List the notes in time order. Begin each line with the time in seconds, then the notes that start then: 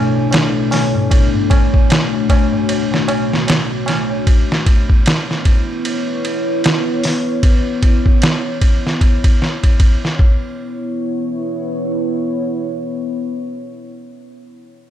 Already playing: B2 A3 D4 E4 C#5
0.15 tabla na
0.31 snare, ride, tabla na
0.71 snare, open hi-hat, tabla na
0.95 tabla na, tabla ge
1.10 F#4, kick, ride, tabla na
1.34 tabla ge
1.50 kick, ride, tabla na
1.73 kick, tabla na
1.90 snare, ride, tabla na
2.13 tabla na
2.29 kick, ride, tabla na
2.52 tabla na, tabla ge
2.69 ride, tabla na
2.92 snare, tabla na
3.08 ride, tabla na
3.30 snare, tabla na
3.47 snare, ride, tabla na
3.86 snare, ride, tabla na
4.10 tabla na
4.26 B3 E4 C#5, kick, ride
4.52 snare
4.66 kick, ride
4.90 kick
5.06 snare, ride
5.31 snare
5.45 kick, ride
5.85 ride
6.25 ride
6.64 snare, ride
7.04 snare, open hi-hat
7.43 kick, ride
7.83 kick, ride
8.06 kick
8.22 snare, ride
8.61 kick, ride
8.87 snare
9.01 kick, ride
9.24 kick, ride
9.42 snare
9.64 kick, ride
9.80 kick, ride
10.05 snare
10.18 B3 E4 C#5, kick